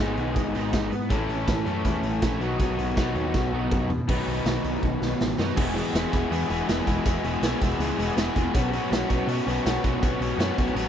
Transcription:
Already playing: G#2
0.00 G#1 D#3 G#3 B3 D#4 G#4
0.17 B1, closed hi-hat
0.36 G#1, kick, closed hi-hat
0.54 G#1 G#2 D#3 G#3 B3 D#4, closed hi-hat
0.73 G#1, kick, snare, closed hi-hat
0.92 G#2, closed hi-hat
1.09 A1 A2 E3 A3 C#4 E4 A4, kick, closed hi-hat
1.29 A1, closed hi-hat
1.47 A1, kick, snare, closed hi-hat
1.65 F#2 A2 E3 A3 C#4 E4 A4, closed hi-hat
1.85 E2, kick, closed hi-hat
2.03 A1, closed hi-hat
2.22 A#1 A2 E3 A3 C#4 E4, kick, snare, closed hi-hat
2.39 B1 B2 D#3 F#3 B3 D#4 F#4, closed hi-hat
2.59 B1, kick, closed hi-hat
2.79 B1, closed hi-hat
2.95 B1 B2 D#3 F#3 B3 D#4 F#4, kick, snare, closed hi-hat
3.15 D#2, closed hi-hat
3.34 B1, kick, snare
3.52 B1 D#3 F#3 B3 D#4
3.56 B2
3.71 B1, kick, mid tom
3.90 B2, floor tom
4.08 B1 B2 D#3 F#3 B3 D#4 B4, kick, crash
4.27 B1, closed hi-hat
4.44 B1, snare, closed hi-hat
4.64 B1, closed hi-hat
4.83 B1, kick
5.01 B1, snare
5.21 A1, snare
5.38 F#2 B2 F#3 B3 D#4, snare
5.56 E1 E2 B2 E3 G#3 B3 E4 G#4 F#5 E6, kick, crash
5.74 E2 B2 E3 G#3 B3 E4 G#4, closed hi-hat
5.93 E1 E2 B2 E3 G#3 B3 E4 G#4, snare, closed hi-hat
6.12 E1 E2 B2 E3 G#3 B3 E4 G#4, kick, closed hi-hat
6.31 E2 B2 E3 G#3 B3 E4 G#4, closed hi-hat
6.41 closed hi-hat
6.49 E1 E2 B2 E3 G#3 B3 E4 G#4, closed hi-hat
6.67 E1 E2 B2 E3 G#3 B3 E4 G#4, snare, closed hi-hat
6.85 E1 E2 B2 E3 G#3 B3 E4 G#4, kick, closed hi-hat
7.05 E1 E2 B2 E3 G#3 B3 E4 G#4, kick, closed hi-hat
7.23 E1 E2 B2 E3 G#3 B3 E4 G#4, closed hi-hat
7.42 B1 E2 B2 E3 G#3 B3 E4 G#4, snare, closed hi-hat
7.61 E1 E2 B2 E3 G#3 B3 E4 G#4, kick, closed hi-hat
7.71 closed hi-hat
7.79 C#2 E2 B2 E3 G#3 B3 E4 G#4, closed hi-hat
7.98 E1 E2 B2 E3 G#3 B3 E4 G#4, closed hi-hat
8.16 E1 E2 B2 E3 G#3 B3 E4 G#4, snare, closed hi-hat
8.34 E1 E2 B2 E3 G#3 B3 E4 G#4, kick, closed hi-hat
8.53 B1 B2 F#3 B3 C#4 F#4 B4 C#6, kick, closed hi-hat
8.72 B2 F#3 B3 C#4 F#4, closed hi-hat
8.91 B1 B2 F#3 B3 C#4 F#4, snare, closed hi-hat
9.09 B1 B2 F#3 B3 C#4 F#4, kick, closed hi-hat
9.27 B2 F#3 B3 C#4 F#4, closed hi-hat
9.38 closed hi-hat
9.47 B1 B2 F#3 B3 C#4 F#4, closed hi-hat
9.65 B1 B2 F#3 B3 C#4 F#4, snare, closed hi-hat
9.84 B1 B2 F#3 B3 C#4 F#4, kick, closed hi-hat
10.02 B1 B2 F#3 B3 C#4 F#4, kick, closed hi-hat
10.20 B1 B2 F#3 B3 C#4 F#4, closed hi-hat
10.38 F#2 B2 F#3 B3 C#4 F#4, snare, closed hi-hat
10.58 B1 B2 F#3 B3 C#4 F#4, kick, closed hi-hat
10.67 closed hi-hat
10.75 A1 B2 F#3 B3 C#4 F#4, closed hi-hat

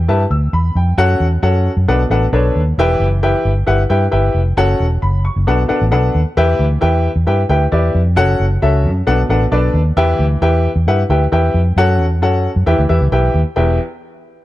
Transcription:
0.08 G2 E4 G4 B4 A5
0.30 D2 E6
0.53 E2 B5
0.75 F2 G5
0.98 F#2 C#4 F#4 A4 F#5
1.20 E2
1.43 F#2 C#4 F#4 A4 F#5
1.77 F#2
1.88 B1 B2 D4 A4 B4 F#5
2.10 A1 D4 A4 B4 F#5
2.33 B1 D4 A4 B4 C#5
2.56 D#2
2.78 E1 E3 E4 G4 B4 G5
3.00 F#1
3.23 E4 G4 B4 G5
3.45 G1
3.66 G1 E4 G4 B4 F#5
3.90 G2 E4 G4 B4 G5
4.11 G1 E4 G4 B4 G5
4.34 F1
4.57 F#1 C#4 F#4 A4 F#5
4.80 E1
5.02 F#1 B5
5.25 C#6
5.36 F#1
5.47 B1 B2 D4 A4 B4 F#5
5.68 D4 A4 B4 F#5, muted fingered electric bass stroke
5.82 A1
5.91 B1 D4 A4 B4 F#5
6.15 D#2
6.37 E2 E3 E4 G4 B4 G5
6.59 D2
6.81 E2 E4 G4 B4 G5
7.16 E2
7.27 G2 E4 G4 B4 G5
7.49 D2 E4 G4 B4 G5
7.72 E2 E4 G4 B4 D5
7.95 F2
8.16 F#1 C#4 F#4 A4 F#5
8.40 F#1
8.62 C#2 C#4 F#4 A4 E5
8.84 F#2
9.07 B1 B2 D4 A4 B4 F#5
9.29 A1 D4 A4 B4 F#5
9.52 B1 D4 A4 B4 D5
9.74 D#2
9.97 E2 E3 E4 G4 B4 G5
10.19 D2
10.42 E2 E4 G4 B4 G5
10.76 E2
10.87 G2 E4 G4 B4 F#5
11.09 D2 E4 G4 B4 G5
11.32 E2 E4 G4 B4 G5
11.54 F2
11.76 F#2 C#4 F#4 A4 F#5
12.00 E2
12.22 F#2 C#4 F#4 A4 F#5
12.56 F#2
12.66 E2 E3 E4 G4 B4 G5
12.79 D2
12.89 E2 E4 G4 B4 E5
13.01 C#2
13.12 B1 E4 G4 B4 G5
13.34 D#2
13.56 E1 E2 E4 G4 B4 G5

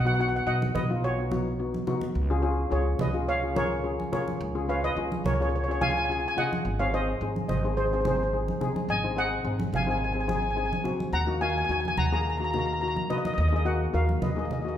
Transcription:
Already playing: B1
0.05 B3 D#4 F#4 F#5
0.14 F#5
0.19 B3 D#4 F#4 F#5
0.29 F#5
0.36 F#5
0.46 B1 B3 D#4 F#4 D#5 F#5
0.62 high conga
0.75 B1 B4 D#5, high conga, low conga
0.90 B3 D#4 F4
1.04 F#4 C#5
1.18 B3 D#4 F#4
1.31 B3 D#4 F#4, high conga, low conga
1.59 B3 D#4 F#4
1.74 high conga
1.87 B3 D#4 F#4, low conga
2.01 high conga
2.15 C#2
2.30 C#4 F4 G#4
2.42 C#4 F4 G#4
2.70 C#2 C#4 F4 G#4 C#5
2.99 C#2 B4 D#5, high conga, low conga
3.13 C#4 F4 G#4
3.28 C#5 F5
3.42 C#4 F4 G#4
3.55 C#4 F4 G#4 A#4 C#5, high conga, low conga
3.84 C#4 F4 G#4
4.00 high conga
4.12 C#4 F4 G#4 A#4 C#5, low conga
4.28 high conga
4.41 C#2
4.55 C#4 F4 G#4
4.69 C#4 F4 B4 C#5 F5
4.84 B4 D#5
4.97 C#2 C#4 F4 G#4
5.12 high conga
5.24 C#2 A#4 C#5, high conga, low conga
5.34 C#5
5.40 C#4 F4 G#4 C#5
5.49 C#5
5.56 C#5
5.64 C#5
5.68 C#4 F4 G#4 C#5
5.81 C#4 F4 G#4 F5 G#5, high conga, low conga
5.90 G#5
5.97 G#5
6.05 G#5
6.09 C#4 F4 G#4 G#5
6.20 G#5
6.28 G#5
6.37 C#4 F4 G#4 D#5 F#5, low conga
6.53 high conga
6.65 G#1
6.79 C4 D#4 G#4 C#5 F5
6.94 C4 D#4 G#4 C5 D#5
7.21 G#1 C4 D#4 G#4
7.36 high conga
7.49 G#1 C5 D#5, high conga, low conga
7.64 C4 D#4 G#4
7.77 G#4 C5
7.86 C5
7.93 C4 D#4 G#4 C5
8.01 C5
8.05 C4 D#4 G#4 C5, high conga, low conga
8.16 C5
8.23 C5
8.33 C4 D#4 G#4
8.48 high conga
8.61 C4 D#4 G#4, low conga
8.76 high conga
8.89 G#1 D#5 G#5
9.04 C4 D#4 G#4
9.16 C4 D#4 G#4 D#5 F#5
9.44 G#1 C4 D#4 G#4
9.60 high conga
9.72 G#1 F5 G#5, high conga, low conga
9.83 C4 D#4 G#4 G#5
9.91 G#5
9.98 G#5
10.04 G#5
10.13 C4 D#4 G#4 G#5
10.20 G#5
10.27 C4 D#4 G#4 G#5, high conga, low conga
10.36 G#5
10.42 G#5
10.51 G#5
10.56 C4 D#4 G#4 G#5
10.66 G#5
10.72 G#5, high conga
10.84 C4 D#4 F#4, low conga
11.00 high conga
11.13 D#2 F#5 A#5
11.27 A#3 D#4 F#4
11.41 A#3 D#4 F#4 F5 G#5
11.50 G#5
11.57 G#5
11.65 G#5
11.69 D#2 A#3 D#4 F#4 G#5
11.80 G#5
11.85 G#5, high conga
11.97 D#2 F#5 A#5, high conga, low conga
12.06 A#5
12.12 A#3 D#4 G#4 A#5
12.21 A#5
12.30 A#5
12.38 A#3 D#4 F#4 A#5
12.44 A#5
12.51 A#3 D#4 F#4 A#5, low conga
12.59 A#5
12.66 A#5
12.73 A#5
12.81 A#3 D#4 F#4 A#5
12.88 A#5
12.96 A#5, high conga
13.10 A#3 D#4 F#4 B4 D#5, low conga
13.18 D#5
13.25 D#5, high conga
13.34 D#5
13.38 D#2 D#5
13.48 A#3 D#5
13.52 D#4 G#4 D#5
13.65 A#3 D#4 F#4 D#5 F#5
13.93 D#2 A#3 D#4 F#4 A#4 F5
14.09 high conga
14.22 D#2 B4 D#5, high conga, low conga
14.31 D#5
14.36 A#3 D#4 G#4 D#5
14.45 D#5
14.51 D#5, low conga
14.62 A#3 D#4 F#4 D#5
14.68 D#5

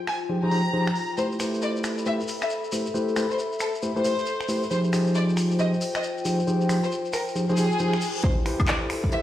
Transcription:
Already playing: F4 C5 G5
0.07 G#5, finger snap, open hi-hat
0.29 F3 D#4 G4 G#4 C5
0.43 F3 D#4 G4 G#4 C5 A#5
0.51 F3 D#4 G4 G#4 C5, open hi-hat
0.74 F3 D#4 G4 G#4 C5
0.87 finger snap
0.95 open hi-hat
1.18 A3 E4 G4 A4 B4 C5, shekere
1.32 E5 B5, shekere
1.40 A3 E4 G4 B4 C5, finger snap, open hi-hat, shekere
1.54 shekere
1.62 D5, shekere
1.76 shekere
1.84 finger snap, open hi-hat, shekere
1.98 shekere
2.06 A3 E4 G4 B4 C5 E5, shekere
2.21 shekere
2.28 open hi-hat, shekere
2.42 E5, finger snap, shekere
2.50 shekere
2.64 shekere
2.72 A3 E4 G4 B4 C5, open hi-hat, shekere
2.86 shekere
2.94 A3 E4 G4 B4 C5, shekere
3.08 shekere
3.16 A3 E4 G4 B4 C5, finger snap, open hi-hat, shekere
3.30 C5, shekere
3.39 shekere
3.52 shekere
3.60 A4, finger snap, open hi-hat, shekere
3.75 shekere
3.82 A3 E4 G4 B4 C5, shekere
3.96 A3 E4 G4 B4 C5, shekere
4.05 A3 E4 G4 B4 C5, open hi-hat, shekere
4.19 shekere
4.26 shekere
4.41 finger snap, shekere
4.49 A3 E4 G4 B4 C5, open hi-hat, shekere
4.63 shekere
4.71 F3 D#4 F4 G4 G#4 C5, shekere
4.78 C5
4.84 shekere
4.93 F3 D#4 G4 G#4 C5, finger snap, open hi-hat, shekere
5.07 shekere
5.14 D5 G5, shekere
5.29 shekere
5.37 finger snap, open hi-hat, shekere
5.51 shekere
5.59 F3 D#4 G4 G#4 C5 D#5, shekere
5.74 shekere
5.81 open hi-hat, shekere
5.95 D#5, finger snap, shekere
6.04 shekere
6.18 shekere
6.25 F3 D#4 G4 G#4 C5, open hi-hat, shekere
6.39 shekere
6.47 F3 D#4 G4 G#4 C5, shekere
6.61 shekere
6.69 F3 D#4 G4 G#4 C5, finger snap, open hi-hat, shekere
6.83 C5, shekere
6.92 shekere
7.05 shekere
7.13 A#4, finger snap, open hi-hat, shekere
7.28 shekere
7.35 F3 D#4 G4 G#4 C5, reverse cymbal, shekere
7.49 F3 D#4 G4 G#4 C5, shekere
7.57 F3 D#4 G4 G#4 C5, open hi-hat, shekere
7.72 shekere
7.79 F3 D#4 G4 G#4 C5, shekere
7.93 finger snap, shekere
8.01 open hi-hat, shekere
8.16 shekere
8.24 E4 G4 A4 B4 C5, kick, closed hi-hat, riser
8.31 E5
8.46 E4 G4 B4 C5, finger snap, open hi-hat
8.59 B5, kick, closed hi-hat, high woodblock
8.68 D5, clap, closed hi-hat
8.90 finger snap, open hi-hat
9.04 kick
9.12 E4 G4 B4 C5 E5, closed hi-hat

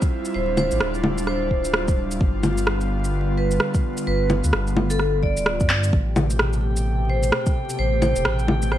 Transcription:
Already playing: G3 C4 E4 F4
0.02 kick, shaker
0.25 shaker
0.34 D1 D4 C5
0.57 C5, low bongo, shaker
0.71 A1, shaker
0.80 D1, cross-stick
0.94 shaker
1.04 low bongo
1.18 shaker
1.27 C5, cross-stick
1.51 kick
1.65 shaker
1.74 cross-stick
1.88 kick, shaker
2.11 shaker
2.20 G1 D3 B3, kick
2.43 low bongo, shaker
2.58 shaker
2.67 cross-stick
2.81 shaker
3.04 shaker
3.38 B4
3.51 shaker
3.60 cross-stick
3.74 kick, shaker
3.97 shaker
4.07 G1 B4
4.30 low bongo, shaker
4.44 D2, shaker
4.53 G1, cross-stick
4.67 shaker
4.77 low bongo
4.90 A4, shaker
4.99 cross-stick
5.23 D5, kick
5.37 D1, shaker
5.46 cross-stick
5.60 G2, kick, shaker
5.69 clap
5.84 shaker
5.93 A1 B2 C3 A3 G4 G5, kick
6.16 low bongo, shaker
6.30 shaker
6.39 cross-stick
6.53 shaker
6.77 shaker
7.09 C5
7.23 shaker
7.32 cross-stick
7.46 kick, shaker
7.69 shaker
7.79 A1 C5
8.02 C5, low bongo, shaker
8.16 E1, shaker
8.25 A1, cross-stick
8.39 shaker
8.48 low bongo
8.62 shaker
8.72 C5, cross-stick

